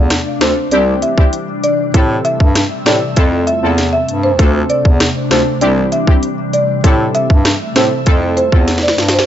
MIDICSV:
0, 0, Header, 1, 6, 480
1, 0, Start_track
1, 0, Key_signature, -1, "minor"
1, 0, Tempo, 612245
1, 1523, Time_signature, 4, 2, 24, 8
1, 7260, End_track
2, 0, Start_track
2, 0, Title_t, "Marimba"
2, 0, Program_c, 0, 12
2, 322, Note_on_c, 0, 72, 80
2, 470, Note_off_c, 0, 72, 0
2, 563, Note_on_c, 0, 74, 89
2, 637, Note_off_c, 0, 74, 0
2, 802, Note_on_c, 0, 76, 81
2, 876, Note_off_c, 0, 76, 0
2, 1283, Note_on_c, 0, 74, 83
2, 1357, Note_off_c, 0, 74, 0
2, 1762, Note_on_c, 0, 76, 93
2, 1836, Note_off_c, 0, 76, 0
2, 2241, Note_on_c, 0, 74, 87
2, 2389, Note_off_c, 0, 74, 0
2, 2721, Note_on_c, 0, 76, 87
2, 2795, Note_off_c, 0, 76, 0
2, 3079, Note_on_c, 0, 76, 81
2, 3154, Note_off_c, 0, 76, 0
2, 3320, Note_on_c, 0, 72, 77
2, 3395, Note_off_c, 0, 72, 0
2, 3682, Note_on_c, 0, 74, 82
2, 3756, Note_off_c, 0, 74, 0
2, 4162, Note_on_c, 0, 72, 84
2, 4310, Note_off_c, 0, 72, 0
2, 4402, Note_on_c, 0, 74, 91
2, 4476, Note_off_c, 0, 74, 0
2, 4643, Note_on_c, 0, 76, 80
2, 4717, Note_off_c, 0, 76, 0
2, 5124, Note_on_c, 0, 74, 85
2, 5197, Note_off_c, 0, 74, 0
2, 5603, Note_on_c, 0, 76, 93
2, 5677, Note_off_c, 0, 76, 0
2, 6083, Note_on_c, 0, 72, 89
2, 6231, Note_off_c, 0, 72, 0
2, 6561, Note_on_c, 0, 72, 88
2, 6636, Note_off_c, 0, 72, 0
2, 6923, Note_on_c, 0, 74, 78
2, 6997, Note_off_c, 0, 74, 0
2, 7164, Note_on_c, 0, 72, 75
2, 7237, Note_off_c, 0, 72, 0
2, 7260, End_track
3, 0, Start_track
3, 0, Title_t, "Synth stab"
3, 0, Program_c, 1, 62
3, 321, Note_on_c, 1, 60, 78
3, 323, Note_on_c, 1, 62, 72
3, 324, Note_on_c, 1, 65, 73
3, 326, Note_on_c, 1, 69, 88
3, 447, Note_off_c, 1, 60, 0
3, 447, Note_off_c, 1, 62, 0
3, 448, Note_off_c, 1, 65, 0
3, 449, Note_off_c, 1, 69, 0
3, 562, Note_on_c, 1, 60, 95
3, 563, Note_on_c, 1, 62, 84
3, 565, Note_on_c, 1, 64, 83
3, 567, Note_on_c, 1, 67, 106
3, 893, Note_off_c, 1, 60, 0
3, 894, Note_off_c, 1, 62, 0
3, 895, Note_off_c, 1, 64, 0
3, 896, Note_off_c, 1, 67, 0
3, 921, Note_on_c, 1, 60, 80
3, 923, Note_on_c, 1, 62, 77
3, 925, Note_on_c, 1, 64, 77
3, 926, Note_on_c, 1, 67, 93
3, 1047, Note_off_c, 1, 60, 0
3, 1048, Note_off_c, 1, 62, 0
3, 1049, Note_off_c, 1, 64, 0
3, 1049, Note_off_c, 1, 67, 0
3, 1521, Note_on_c, 1, 60, 97
3, 1523, Note_on_c, 1, 64, 90
3, 1524, Note_on_c, 1, 67, 86
3, 1526, Note_on_c, 1, 69, 106
3, 1964, Note_off_c, 1, 60, 0
3, 1964, Note_off_c, 1, 64, 0
3, 1965, Note_off_c, 1, 67, 0
3, 1966, Note_off_c, 1, 69, 0
3, 2241, Note_on_c, 1, 60, 77
3, 2242, Note_on_c, 1, 64, 75
3, 2244, Note_on_c, 1, 67, 71
3, 2245, Note_on_c, 1, 69, 84
3, 2367, Note_off_c, 1, 60, 0
3, 2367, Note_off_c, 1, 64, 0
3, 2368, Note_off_c, 1, 67, 0
3, 2369, Note_off_c, 1, 69, 0
3, 2481, Note_on_c, 1, 60, 95
3, 2482, Note_on_c, 1, 64, 90
3, 2484, Note_on_c, 1, 65, 85
3, 2486, Note_on_c, 1, 69, 108
3, 2813, Note_off_c, 1, 60, 0
3, 2814, Note_off_c, 1, 64, 0
3, 2814, Note_off_c, 1, 65, 0
3, 2816, Note_off_c, 1, 69, 0
3, 2842, Note_on_c, 1, 60, 83
3, 2844, Note_on_c, 1, 64, 75
3, 2845, Note_on_c, 1, 65, 72
3, 2847, Note_on_c, 1, 69, 89
3, 2967, Note_off_c, 1, 60, 0
3, 2968, Note_off_c, 1, 64, 0
3, 2969, Note_off_c, 1, 65, 0
3, 2970, Note_off_c, 1, 69, 0
3, 3441, Note_on_c, 1, 60, 94
3, 3442, Note_on_c, 1, 62, 88
3, 3444, Note_on_c, 1, 65, 86
3, 3445, Note_on_c, 1, 69, 108
3, 3883, Note_off_c, 1, 60, 0
3, 3884, Note_off_c, 1, 62, 0
3, 3885, Note_off_c, 1, 65, 0
3, 3886, Note_off_c, 1, 69, 0
3, 4160, Note_on_c, 1, 60, 77
3, 4162, Note_on_c, 1, 62, 75
3, 4163, Note_on_c, 1, 65, 72
3, 4165, Note_on_c, 1, 69, 89
3, 4286, Note_off_c, 1, 60, 0
3, 4287, Note_off_c, 1, 62, 0
3, 4287, Note_off_c, 1, 65, 0
3, 4289, Note_off_c, 1, 69, 0
3, 4400, Note_on_c, 1, 60, 96
3, 4402, Note_on_c, 1, 62, 86
3, 4403, Note_on_c, 1, 64, 92
3, 4405, Note_on_c, 1, 67, 103
3, 4733, Note_off_c, 1, 60, 0
3, 4734, Note_off_c, 1, 62, 0
3, 4734, Note_off_c, 1, 64, 0
3, 4735, Note_off_c, 1, 67, 0
3, 4761, Note_on_c, 1, 60, 78
3, 4764, Note_on_c, 1, 62, 75
3, 4765, Note_on_c, 1, 64, 73
3, 4766, Note_on_c, 1, 67, 93
3, 4887, Note_off_c, 1, 60, 0
3, 4888, Note_off_c, 1, 62, 0
3, 4888, Note_off_c, 1, 64, 0
3, 4889, Note_off_c, 1, 67, 0
3, 5361, Note_on_c, 1, 60, 95
3, 5363, Note_on_c, 1, 64, 91
3, 5364, Note_on_c, 1, 67, 88
3, 5366, Note_on_c, 1, 69, 107
3, 5804, Note_off_c, 1, 60, 0
3, 5805, Note_off_c, 1, 64, 0
3, 5805, Note_off_c, 1, 67, 0
3, 5806, Note_off_c, 1, 69, 0
3, 6081, Note_on_c, 1, 60, 83
3, 6083, Note_on_c, 1, 64, 71
3, 6085, Note_on_c, 1, 67, 75
3, 6086, Note_on_c, 1, 69, 89
3, 6207, Note_off_c, 1, 60, 0
3, 6208, Note_off_c, 1, 64, 0
3, 6208, Note_off_c, 1, 67, 0
3, 6209, Note_off_c, 1, 69, 0
3, 6320, Note_on_c, 1, 60, 91
3, 6322, Note_on_c, 1, 64, 86
3, 6323, Note_on_c, 1, 65, 86
3, 6325, Note_on_c, 1, 69, 108
3, 6653, Note_off_c, 1, 60, 0
3, 6654, Note_off_c, 1, 64, 0
3, 6654, Note_off_c, 1, 65, 0
3, 6655, Note_off_c, 1, 69, 0
3, 6682, Note_on_c, 1, 60, 79
3, 6683, Note_on_c, 1, 64, 75
3, 6684, Note_on_c, 1, 65, 73
3, 6686, Note_on_c, 1, 69, 85
3, 6807, Note_off_c, 1, 60, 0
3, 6808, Note_off_c, 1, 64, 0
3, 6808, Note_off_c, 1, 65, 0
3, 6809, Note_off_c, 1, 69, 0
3, 7260, End_track
4, 0, Start_track
4, 0, Title_t, "Ambient pad"
4, 0, Program_c, 2, 92
4, 0, Note_on_c, 2, 48, 82
4, 0, Note_on_c, 2, 57, 76
4, 0, Note_on_c, 2, 62, 89
4, 534, Note_off_c, 2, 57, 0
4, 553, Note_off_c, 2, 62, 0
4, 562, Note_on_c, 2, 52, 74
4, 562, Note_on_c, 2, 55, 79
4, 562, Note_on_c, 2, 62, 88
4, 1493, Note_off_c, 2, 48, 0
4, 1513, Note_off_c, 2, 52, 0
4, 1513, Note_off_c, 2, 62, 0
4, 1522, Note_on_c, 2, 48, 82
4, 1522, Note_on_c, 2, 57, 72
4, 1523, Note_on_c, 2, 76, 90
4, 2463, Note_off_c, 2, 55, 0
4, 2473, Note_off_c, 2, 57, 0
4, 2485, Note_on_c, 2, 57, 75
4, 3423, Note_off_c, 2, 48, 0
4, 3424, Note_off_c, 2, 76, 0
4, 3442, Note_on_c, 2, 62, 87
4, 3443, Note_on_c, 2, 48, 83
4, 4385, Note_off_c, 2, 57, 0
4, 4402, Note_on_c, 2, 52, 75
4, 4402, Note_on_c, 2, 55, 74
4, 5343, Note_off_c, 2, 62, 0
4, 5353, Note_off_c, 2, 52, 0
4, 5353, Note_off_c, 2, 55, 0
4, 5363, Note_on_c, 2, 55, 73
4, 5363, Note_on_c, 2, 57, 75
4, 5364, Note_on_c, 2, 76, 90
4, 6313, Note_off_c, 2, 55, 0
4, 7251, Note_off_c, 2, 48, 0
4, 7260, Note_off_c, 2, 57, 0
4, 7260, Note_off_c, 2, 76, 0
4, 7260, End_track
5, 0, Start_track
5, 0, Title_t, "Bass clarinet"
5, 0, Program_c, 3, 71
5, 0, Note_on_c, 3, 40, 90
5, 150, Note_off_c, 3, 40, 0
5, 323, Note_on_c, 3, 38, 93
5, 416, Note_off_c, 3, 38, 0
5, 562, Note_on_c, 3, 36, 110
5, 749, Note_off_c, 3, 36, 0
5, 1522, Note_on_c, 3, 45, 109
5, 1710, Note_off_c, 3, 45, 0
5, 1883, Note_on_c, 3, 43, 99
5, 2070, Note_off_c, 3, 43, 0
5, 2243, Note_on_c, 3, 45, 91
5, 2337, Note_off_c, 3, 45, 0
5, 2484, Note_on_c, 3, 41, 108
5, 2764, Note_off_c, 3, 41, 0
5, 2843, Note_on_c, 3, 40, 99
5, 3124, Note_off_c, 3, 40, 0
5, 3202, Note_on_c, 3, 43, 99
5, 3442, Note_on_c, 3, 38, 115
5, 3454, Note_off_c, 3, 43, 0
5, 3630, Note_off_c, 3, 38, 0
5, 3803, Note_on_c, 3, 40, 94
5, 3990, Note_off_c, 3, 40, 0
5, 4163, Note_on_c, 3, 38, 97
5, 4257, Note_off_c, 3, 38, 0
5, 4403, Note_on_c, 3, 36, 113
5, 4590, Note_off_c, 3, 36, 0
5, 5363, Note_on_c, 3, 45, 102
5, 5550, Note_off_c, 3, 45, 0
5, 5723, Note_on_c, 3, 43, 97
5, 5910, Note_off_c, 3, 43, 0
5, 6083, Note_on_c, 3, 45, 90
5, 6177, Note_off_c, 3, 45, 0
5, 6324, Note_on_c, 3, 41, 110
5, 6604, Note_off_c, 3, 41, 0
5, 6683, Note_on_c, 3, 40, 93
5, 6964, Note_off_c, 3, 40, 0
5, 7044, Note_on_c, 3, 43, 90
5, 7231, Note_off_c, 3, 43, 0
5, 7260, End_track
6, 0, Start_track
6, 0, Title_t, "Drums"
6, 81, Note_on_c, 9, 38, 121
6, 81, Note_on_c, 9, 42, 93
6, 83, Note_on_c, 9, 37, 101
6, 160, Note_off_c, 9, 38, 0
6, 160, Note_off_c, 9, 42, 0
6, 162, Note_off_c, 9, 37, 0
6, 322, Note_on_c, 9, 38, 115
6, 322, Note_on_c, 9, 42, 52
6, 325, Note_on_c, 9, 37, 91
6, 400, Note_off_c, 9, 42, 0
6, 401, Note_off_c, 9, 38, 0
6, 403, Note_off_c, 9, 37, 0
6, 560, Note_on_c, 9, 42, 72
6, 638, Note_off_c, 9, 42, 0
6, 802, Note_on_c, 9, 42, 54
6, 880, Note_off_c, 9, 42, 0
6, 922, Note_on_c, 9, 36, 95
6, 1000, Note_off_c, 9, 36, 0
6, 1042, Note_on_c, 9, 42, 62
6, 1120, Note_off_c, 9, 42, 0
6, 1282, Note_on_c, 9, 42, 51
6, 1361, Note_off_c, 9, 42, 0
6, 1523, Note_on_c, 9, 36, 125
6, 1523, Note_on_c, 9, 42, 87
6, 1601, Note_off_c, 9, 36, 0
6, 1601, Note_off_c, 9, 42, 0
6, 1763, Note_on_c, 9, 42, 50
6, 1841, Note_off_c, 9, 42, 0
6, 1883, Note_on_c, 9, 36, 96
6, 1962, Note_off_c, 9, 36, 0
6, 2003, Note_on_c, 9, 38, 121
6, 2003, Note_on_c, 9, 42, 92
6, 2005, Note_on_c, 9, 37, 93
6, 2081, Note_off_c, 9, 38, 0
6, 2081, Note_off_c, 9, 42, 0
6, 2083, Note_off_c, 9, 37, 0
6, 2243, Note_on_c, 9, 38, 116
6, 2243, Note_on_c, 9, 42, 51
6, 2245, Note_on_c, 9, 37, 92
6, 2321, Note_off_c, 9, 42, 0
6, 2322, Note_off_c, 9, 38, 0
6, 2324, Note_off_c, 9, 37, 0
6, 2481, Note_on_c, 9, 42, 75
6, 2484, Note_on_c, 9, 36, 107
6, 2559, Note_off_c, 9, 42, 0
6, 2562, Note_off_c, 9, 36, 0
6, 2722, Note_on_c, 9, 42, 53
6, 2801, Note_off_c, 9, 42, 0
6, 2963, Note_on_c, 9, 42, 64
6, 2964, Note_on_c, 9, 38, 69
6, 3042, Note_off_c, 9, 38, 0
6, 3042, Note_off_c, 9, 42, 0
6, 3203, Note_on_c, 9, 42, 54
6, 3282, Note_off_c, 9, 42, 0
6, 3442, Note_on_c, 9, 36, 127
6, 3442, Note_on_c, 9, 42, 83
6, 3520, Note_off_c, 9, 42, 0
6, 3521, Note_off_c, 9, 36, 0
6, 3683, Note_on_c, 9, 42, 50
6, 3761, Note_off_c, 9, 42, 0
6, 3803, Note_on_c, 9, 36, 92
6, 3882, Note_off_c, 9, 36, 0
6, 3922, Note_on_c, 9, 38, 127
6, 3922, Note_on_c, 9, 42, 90
6, 3924, Note_on_c, 9, 37, 97
6, 4001, Note_off_c, 9, 38, 0
6, 4001, Note_off_c, 9, 42, 0
6, 4003, Note_off_c, 9, 37, 0
6, 4163, Note_on_c, 9, 38, 114
6, 4163, Note_on_c, 9, 42, 53
6, 4165, Note_on_c, 9, 37, 96
6, 4241, Note_off_c, 9, 38, 0
6, 4241, Note_off_c, 9, 42, 0
6, 4244, Note_off_c, 9, 37, 0
6, 4401, Note_on_c, 9, 42, 73
6, 4479, Note_off_c, 9, 42, 0
6, 4642, Note_on_c, 9, 42, 51
6, 4720, Note_off_c, 9, 42, 0
6, 4762, Note_on_c, 9, 36, 97
6, 4841, Note_off_c, 9, 36, 0
6, 4882, Note_on_c, 9, 42, 61
6, 4961, Note_off_c, 9, 42, 0
6, 5123, Note_on_c, 9, 42, 54
6, 5201, Note_off_c, 9, 42, 0
6, 5363, Note_on_c, 9, 36, 124
6, 5363, Note_on_c, 9, 42, 84
6, 5441, Note_off_c, 9, 36, 0
6, 5442, Note_off_c, 9, 42, 0
6, 5603, Note_on_c, 9, 42, 50
6, 5681, Note_off_c, 9, 42, 0
6, 5723, Note_on_c, 9, 36, 95
6, 5802, Note_off_c, 9, 36, 0
6, 5841, Note_on_c, 9, 38, 124
6, 5842, Note_on_c, 9, 42, 90
6, 5844, Note_on_c, 9, 37, 99
6, 5920, Note_off_c, 9, 38, 0
6, 5920, Note_off_c, 9, 42, 0
6, 5922, Note_off_c, 9, 37, 0
6, 6082, Note_on_c, 9, 42, 51
6, 6083, Note_on_c, 9, 38, 112
6, 6085, Note_on_c, 9, 37, 90
6, 6161, Note_off_c, 9, 38, 0
6, 6161, Note_off_c, 9, 42, 0
6, 6163, Note_off_c, 9, 37, 0
6, 6320, Note_on_c, 9, 42, 70
6, 6324, Note_on_c, 9, 36, 105
6, 6398, Note_off_c, 9, 42, 0
6, 6402, Note_off_c, 9, 36, 0
6, 6563, Note_on_c, 9, 42, 52
6, 6641, Note_off_c, 9, 42, 0
6, 6683, Note_on_c, 9, 36, 93
6, 6761, Note_off_c, 9, 36, 0
6, 6802, Note_on_c, 9, 42, 64
6, 6803, Note_on_c, 9, 38, 61
6, 6881, Note_off_c, 9, 38, 0
6, 6881, Note_off_c, 9, 42, 0
6, 6882, Note_on_c, 9, 38, 63
6, 6961, Note_off_c, 9, 38, 0
6, 6963, Note_on_c, 9, 38, 89
6, 7041, Note_off_c, 9, 38, 0
6, 7042, Note_on_c, 9, 42, 54
6, 7043, Note_on_c, 9, 38, 84
6, 7121, Note_off_c, 9, 38, 0
6, 7121, Note_off_c, 9, 42, 0
6, 7123, Note_on_c, 9, 38, 107
6, 7201, Note_off_c, 9, 38, 0
6, 7202, Note_on_c, 9, 38, 106
6, 7260, Note_off_c, 9, 38, 0
6, 7260, End_track
0, 0, End_of_file